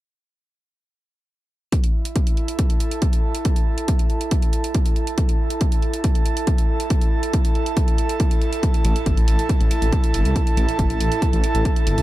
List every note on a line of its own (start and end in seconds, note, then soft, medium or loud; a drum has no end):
1.72 12.02 E4 medium
1.72 kick loud
1.72 closed hi-hat medium
1.84 closed hi-hat medium
2.05 closed hi-hat medium
2.16 kick loud
2.16 closed hi-hat medium
2.20 12.02 A4 medium
2.27 closed hi-hat medium
2.37 closed hi-hat soft
2.48 closed hi-hat medium
2.54 12.02 A5 medium
2.59 kick loud
2.59 closed hi-hat medium
2.70 closed hi-hat medium
2.80 closed hi-hat medium
2.91 closed hi-hat medium
3.02 kick loud
3.02 closed hi-hat medium
3.13 closed hi-hat medium
3.35 closed hi-hat medium
3.45 kick loud
3.45 closed hi-hat medium
3.56 closed hi-hat medium
3.78 closed hi-hat medium
3.88 kick loud
3.88 closed hi-hat medium
3.99 closed hi-hat medium
4.10 closed hi-hat soft
4.21 closed hi-hat medium
4.31 kick loud
4.31 closed hi-hat medium
4.42 closed hi-hat soft
4.53 closed hi-hat medium
4.64 closed hi-hat medium
4.74 kick loud
4.74 closed hi-hat medium
4.86 closed hi-hat medium
4.96 closed hi-hat soft
5.07 closed hi-hat medium
5.18 kick loud
5.18 closed hi-hat medium
5.29 closed hi-hat medium
5.50 closed hi-hat medium
5.61 kick loud
5.61 closed hi-hat medium
5.72 closed hi-hat medium
5.82 closed hi-hat soft
5.93 closed hi-hat medium
6.04 kick loud
6.04 closed hi-hat medium
6.15 closed hi-hat medium
6.26 closed hi-hat medium
6.37 closed hi-hat medium
6.47 kick loud
6.47 closed hi-hat medium
6.58 closed hi-hat medium
6.80 closed hi-hat medium
6.90 kick loud
6.90 closed hi-hat medium
7.01 closed hi-hat medium
7.23 closed hi-hat medium
7.33 kick loud
7.33 closed hi-hat medium
7.45 closed hi-hat medium
7.55 closed hi-hat soft
7.66 closed hi-hat soft
7.77 kick loud
7.77 closed hi-hat medium
7.88 closed hi-hat soft
7.98 closed hi-hat medium
8.09 closed hi-hat soft
8.20 kick loud
8.20 closed hi-hat medium
8.31 closed hi-hat medium
8.41 closed hi-hat soft
8.53 closed hi-hat soft
8.63 kick loud
8.63 closed hi-hat medium
8.74 closed hi-hat soft
8.85 8.94 A1 loud
8.85 open hi-hat loud
8.96 closed hi-hat soft
9.06 9.15 G1 loud
9.06 kick loud
9.06 closed hi-hat medium
9.17 9.26 A1 medium
9.17 closed hi-hat soft
9.28 9.37 A1 loud
9.28 open hi-hat loud
9.39 closed hi-hat soft
9.49 kick loud
9.49 closed hi-hat medium
9.60 9.69 A1 medium
9.60 closed hi-hat soft
9.71 open hi-hat loud
9.82 9.91 A1 medium
9.82 closed hi-hat soft
9.93 kick loud
9.93 closed hi-hat medium
10.04 closed hi-hat soft
10.14 10.23 G1 loud
10.14 open hi-hat loud
10.25 10.34 C2 medium
10.25 closed hi-hat soft
10.36 kick loud
10.36 closed hi-hat medium
10.47 closed hi-hat soft
10.57 10.66 A1 loud
10.57 open hi-hat loud
10.69 closed hi-hat soft
10.79 10.88 G1 loud
10.79 kick loud
10.79 closed hi-hat medium
10.90 10.98 A1 medium
10.90 closed hi-hat soft
11.00 11.10 A1 loud
11.00 open hi-hat loud
11.12 closed hi-hat soft
11.22 kick loud
11.22 closed hi-hat medium
11.33 11.42 A1 medium
11.33 closed hi-hat soft
11.44 open hi-hat loud
11.55 11.63 A1 medium
11.55 closed hi-hat soft
11.65 kick loud
11.65 closed hi-hat medium
11.76 closed hi-hat soft
11.87 11.96 G1 loud
11.87 open hi-hat medium
11.98 12.02 C2 medium
11.98 closed hi-hat soft